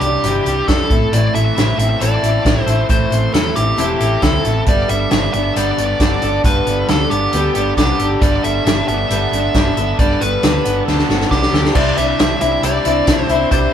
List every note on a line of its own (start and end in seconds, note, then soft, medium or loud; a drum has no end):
0.00 0.16 C2 medium
0.00 0.46 C3 medium
0.00 0.71 E3 medium
0.00 0.66 D4 medium
0.00 0.25 D4 soft
0.00 0.23 E4 medium
0.00 0.69 G4 medium
0.00 0.24 G4 soft
0.00 closed hi-hat medium
0.05 0.24 G3 soft
0.24 0.39 G1 medium
0.24 0.46 C3 medium
0.24 0.47 E3 medium
0.24 0.47 G3 medium
0.24 0.46 D4 medium
0.24 2.00 E4 medium
0.24 0.44 G4 medium
0.24 closed hi-hat medium
0.45 0.60 C2 medium
0.45 0.69 G3 soft
0.45 0.69 D4 soft
0.45 0.68 G4 medium
0.45 closed hi-hat medium
0.68 0.83 F2 medium
0.68 0.90 E3 medium
0.68 0.91 G3 medium
0.68 0.91 D4 medium
0.68 1.14 A4 medium
0.68 kick medium
0.68 snare medium
0.68 closed hi-hat medium
0.72 0.89 G4 medium
0.90 1.05 A1 medium
0.90 1.12 A2 medium
0.90 1.13 C4 soft
0.90 1.13 E4 soft
0.90 1.12 A4 medium
0.90 kick loud
0.90 closed hi-hat medium
1.12 1.27 A1 medium
1.12 1.35 A2 medium
1.12 1.35 E3 medium
1.12 1.35 C4 medium
1.12 1.35 E4 medium
1.12 1.33 A4 medium
1.12 1.34 D5 loud
1.12 closed hi-hat medium
1.34 1.49 A1 medium
1.34 2.45 E3 medium
1.34 1.57 C4 soft
1.34 1.57 E4 soft
1.34 1.57 A4 soft
1.34 1.78 E5 medium
1.34 closed hi-hat medium
1.56 1.71 A1 medium
1.56 1.79 E3 medium
1.56 1.80 C4 medium
1.56 1.79 E4 medium
1.56 1.77 A4 medium
1.56 snare loud
1.56 closed hi-hat medium
1.78 1.93 A1 medium
1.78 2.01 C4 soft
1.78 2.01 E4 soft
1.78 2.01 A4 soft
1.78 2.02 E5 medium
1.78 closed hi-hat medium
2.00 2.15 A1 medium
2.00 2.23 A2 medium
2.00 2.23 E3 medium
2.00 2.24 C4 medium
2.00 2.24 E4 medium
2.00 2.22 A4 medium
2.00 2.62 D5 medium
2.00 closed hi-hat medium
2.23 2.38 A1 medium
2.23 2.45 C4 medium
2.23 2.45 E4 soft
2.23 2.45 A4 soft
2.23 closed hi-hat medium
2.45 2.60 A1 medium
2.45 2.67 E3 medium
2.45 2.68 C4 medium
2.45 2.68 E4 medium
2.45 2.66 A4 medium
2.45 kick medium
2.45 snare loud
2.45 closed hi-hat medium
2.62 2.86 C5 medium
2.66 2.82 A1 medium
2.66 2.89 C4 soft
2.66 2.89 E4 medium
2.66 2.89 A4 medium
2.66 closed hi-hat medium
2.89 3.04 A1 medium
2.89 3.11 A2 medium
2.89 3.12 E3 medium
2.89 3.12 C4 medium
2.89 3.11 E4 medium
2.89 3.09 A4 medium
2.89 3.33 C5 medium
2.89 kick loud
2.89 closed hi-hat medium
3.10 3.26 A1 medium
3.10 4.23 E3 medium
3.10 3.33 C4 soft
3.10 3.34 E4 soft
3.10 3.33 A4 soft
3.10 closed hi-hat medium
3.33 3.48 E2 medium
3.33 3.55 E3 medium
3.33 3.56 C4 medium
3.33 3.55 E4 medium
3.33 3.57 A4 medium
3.33 3.53 A4 medium
3.33 snare loud
3.33 closed hi-hat medium
3.55 3.71 A1 medium
3.55 3.77 C4 soft
3.55 3.77 E4 soft
3.55 4.24 G4 medium
3.55 3.77 A4 soft
3.55 closed hi-hat medium
3.77 3.93 E1 medium
3.77 4.00 A2 medium
3.77 4.00 E3 medium
3.77 4.00 C4 medium
3.77 4.01 E4 medium
3.77 3.99 A4 medium
3.77 closed hi-hat medium
4.00 4.15 A1 medium
4.00 4.22 C4 soft
4.00 4.23 E4 medium
4.00 4.22 A4 medium
4.00 closed hi-hat medium
4.22 4.37 D2 medium
4.22 4.44 E3 medium
4.22 4.45 C4 medium
4.22 4.45 E4 medium
4.22 4.64 A4 medium
4.22 4.43 A4 medium
4.22 kick medium
4.22 snare loud
4.22 closed hi-hat medium
4.44 4.60 A1 medium
4.44 4.67 C4 soft
4.44 4.67 E4 soft
4.44 4.67 A4 soft
4.44 closed hi-hat medium
4.66 4.82 G1 loud
4.66 4.89 G3 medium
4.66 4.89 B3 medium
4.66 4.89 D4 medium
4.66 4.87 A4 medium
4.66 4.90 D5 medium
4.66 kick medium
4.66 closed hi-hat medium
4.88 5.04 G1 medium
4.88 6.25 G3 medium
4.88 5.11 B3 soft
4.88 5.12 D4 soft
4.88 5.11 A4 medium
4.88 5.32 E5 medium
4.88 closed hi-hat medium
5.11 5.26 G1 medium
5.11 5.33 G3 soft
5.11 5.34 B3 medium
5.11 5.34 D4 medium
5.11 5.33 A4 medium
5.11 snare loud
5.11 closed hi-hat medium
5.33 5.49 G1 medium
5.33 5.77 B3 medium
5.33 5.57 D4 soft
5.33 5.56 A4 medium
5.33 5.54 E5 medium
5.33 closed hi-hat medium
5.37 5.56 B3 soft
5.55 5.71 G1 medium
5.55 5.78 G3 medium
5.55 5.79 B3 medium
5.55 5.79 D4 medium
5.55 6.21 A4 medium
5.55 6.41 D5 medium
5.55 closed hi-hat medium
5.59 5.77 A4 medium
5.77 5.93 G1 medium
5.77 7.09 B3 medium
5.77 6.01 D4 soft
5.77 6.00 A4 medium
5.77 closed hi-hat medium
5.82 6.00 B3 soft
6.00 6.14 G1 medium
6.00 6.22 G3 medium
6.00 6.23 B3 medium
6.00 6.23 D4 medium
6.00 kick medium
6.00 snare medium
6.00 closed hi-hat medium
6.04 6.21 A4 medium
6.22 6.37 G1 medium
6.22 6.44 B3 soft
6.22 6.45 D4 soft
6.22 6.44 A4 medium
6.22 closed hi-hat medium
6.44 6.59 G1 medium
6.44 6.66 G3 medium
6.44 6.67 B3 medium
6.44 6.67 D4 medium
6.44 6.65 A4 medium
6.44 6.86 B4 medium
6.44 kick loud
6.44 closed hi-hat medium
6.66 6.82 G1 medium
6.66 8.01 G3 medium
6.66 6.88 B3 soft
6.66 6.89 D4 soft
6.66 6.88 A4 soft
6.66 closed hi-hat medium
6.88 7.04 D2 medium
6.88 7.10 G3 medium
6.88 7.11 B3 medium
6.88 7.11 D4 medium
6.88 7.12 A4 medium
6.88 7.09 A4 medium
6.88 snare loud
6.88 closed hi-hat medium
7.10 7.25 G1 medium
7.10 7.33 B3 soft
7.10 7.33 D4 soft
7.10 7.73 G4 medium
7.10 7.32 A4 medium
7.10 closed hi-hat medium
7.31 7.48 D2 medium
7.31 7.55 G3 medium
7.31 7.56 B3 medium
7.31 7.55 D4 medium
7.31 7.98 A4 medium
7.31 closed hi-hat medium
7.36 7.54 A4 medium
7.53 7.70 G1 medium
7.53 8.87 B3 medium
7.53 7.78 D4 soft
7.53 7.77 A4 medium
7.53 closed hi-hat medium
7.58 7.77 B3 soft
7.77 7.92 C2 medium
7.77 7.99 G3 medium
7.77 8.00 B3 medium
7.77 8.00 D4 medium
7.77 8.23 G4 medium
7.77 7.98 A4 medium
7.77 kick medium
7.77 snare loud
7.77 closed hi-hat medium
7.99 8.14 G1 medium
7.99 8.21 B3 soft
7.99 8.22 D4 soft
7.99 8.21 A4 soft
7.99 closed hi-hat medium
8.22 8.36 G1 loud
8.22 8.44 G3 medium
8.22 8.44 B3 medium
8.22 8.44 D4 medium
8.22 8.43 A4 medium
8.22 8.44 D5 loud
8.22 kick loud
8.22 closed hi-hat medium
8.43 8.58 G1 medium
8.43 9.80 G3 medium
8.43 8.66 B3 soft
8.43 8.66 D4 soft
8.43 8.66 A4 soft
8.43 8.85 E5 loud
8.43 closed hi-hat medium
8.65 8.80 G1 medium
8.65 8.88 G3 medium
8.65 8.89 B3 medium
8.65 8.89 D4 medium
8.65 snare loud
8.65 closed hi-hat medium
8.69 8.87 A4 medium
8.87 9.03 G1 medium
8.87 9.30 B3 medium
8.87 9.11 D4 soft
8.87 9.10 A4 medium
8.87 9.99 E5 medium
8.87 closed hi-hat medium
8.91 9.10 B3 soft
9.10 9.25 G1 medium
9.10 9.32 G3 medium
9.10 9.33 B3 medium
9.10 9.33 D4 medium
9.10 9.31 A4 medium
9.10 closed hi-hat medium
9.32 9.47 G1 medium
9.32 10.42 B3 medium
9.32 9.55 D4 medium
9.32 9.54 A4 medium
9.32 closed hi-hat medium
9.36 9.55 B3 soft
9.54 9.69 G1 medium
9.54 9.76 G3 medium
9.54 9.77 B3 medium
9.54 9.77 D4 medium
9.54 9.76 A4 medium
9.54 kick medium
9.54 snare medium
9.54 closed hi-hat medium
9.77 9.91 G1 medium
9.77 9.99 B3 soft
9.77 10.00 D4 medium
9.77 9.99 A4 medium
9.77 closed hi-hat medium
9.99 10.13 G1 medium
9.99 10.21 G3 medium
9.99 10.21 B3 medium
9.99 10.21 D4 medium
9.99 10.20 A4 medium
9.99 10.21 D5 medium
9.99 kick loud
9.99 closed hi-hat medium
10.21 10.35 G1 medium
10.21 11.31 G3 medium
10.21 10.42 B3 soft
10.21 10.43 D4 soft
10.21 10.43 A4 soft
10.21 10.83 B4 medium
10.21 closed hi-hat medium
10.43 10.58 D2 medium
10.43 10.65 G3 medium
10.43 10.65 B3 medium
10.43 10.66 D4 medium
10.43 10.64 A4 medium
10.43 snare loud
10.43 closed hi-hat medium
10.65 10.80 G1 medium
10.65 10.87 B3 soft
10.65 10.88 D4 soft
10.65 10.87 A4 soft
10.65 closed hi-hat medium
10.86 11.02 D2 medium
10.86 11.09 G3 medium
10.86 11.10 B3 medium
10.86 11.10 D4 medium
10.86 11.52 A4 medium
10.86 snare medium
10.90 11.09 A4 medium
10.99 snare soft
11.08 11.24 G1 medium
11.08 11.75 B3 medium
11.08 11.32 D4 medium
11.08 11.31 A4 medium
11.08 snare medium
11.13 11.31 B3 medium
11.21 snare medium
11.31 11.46 C2 medium
11.31 11.53 G3 medium
11.31 11.54 B3 medium
11.31 11.54 D4 medium
11.31 11.76 G4 medium
11.31 11.52 A4 medium
11.31 kick medium
11.31 snare medium
11.42 snare medium
11.53 11.68 D2 medium
11.53 11.76 B3 soft
11.53 11.76 D4 medium
11.53 11.75 A4 medium
11.53 snare medium
11.65 snare medium
11.73 11.90 C2 medium
11.73 11.97 C3 medium
11.73 11.97 G3 medium
11.73 11.98 C4 medium
11.73 11.98 D4 medium
11.73 11.91 E4 medium
11.73 11.97 E4 medium
11.73 13.73 C5 medium
11.73 11.91 C5 medium
11.73 11.92 D5 medium
11.73 11.96 D5 medium
11.73 13.73 E5 medium
11.73 13.73 D6 medium
11.73 kick loud
11.73 crash medium
11.96 12.12 C2 medium
11.96 13.07 G3 medium
11.96 12.20 D4 soft
11.96 12.64 E4 medium
11.96 12.19 E4 soft
11.96 12.64 C5 medium
11.96 12.65 D5 medium
11.96 12.41 E5 loud
11.96 closed hi-hat medium
12.01 12.19 C4 soft
12.19 12.34 C2 medium
12.19 12.41 G3 medium
12.19 12.42 C4 medium
12.19 12.41 D4 medium
12.19 12.40 E4 medium
12.19 snare loud
12.19 closed hi-hat medium
12.41 12.56 C2 loud
12.41 12.64 C4 soft
12.41 12.64 D4 soft
12.41 12.63 E4 medium
12.41 12.62 E5 loud
12.41 closed hi-hat medium
12.63 12.78 C2 medium
12.63 12.85 C3 medium
12.63 12.86 G3 medium
12.63 12.86 C4 medium
12.63 12.86 D4 medium
12.63 12.84 E4 medium
12.63 13.25 D5 medium
12.63 closed hi-hat medium
12.85 13.00 C2 medium
12.85 13.08 D4 soft
12.85 13.36 E4 medium
12.85 13.07 E4 medium
12.85 13.36 C5 medium
12.85 13.36 D5 medium
12.85 closed hi-hat medium
12.89 13.07 C4 soft
13.07 13.22 C2 medium
13.07 13.29 G3 medium
13.07 13.30 C4 medium
13.07 13.30 D4 medium
13.07 13.29 E4 medium
13.07 kick medium
13.07 snare medium
13.07 closed hi-hat medium
13.25 13.48 C5 medium
13.29 13.44 C2 medium
13.29 13.52 D4 soft
13.29 13.52 E4 medium
13.29 closed hi-hat medium
13.33 13.51 C4 medium
13.51 13.66 C2 medium
13.51 13.73 C3 medium
13.51 13.73 G3 medium
13.51 13.73 C4 medium
13.51 13.73 D4 medium
13.51 13.68 E4 medium
13.51 13.72 E4 medium
13.51 13.72 C5 loud
13.51 13.69 C5 medium
13.51 13.69 D5 medium
13.51 kick loud
13.51 closed hi-hat medium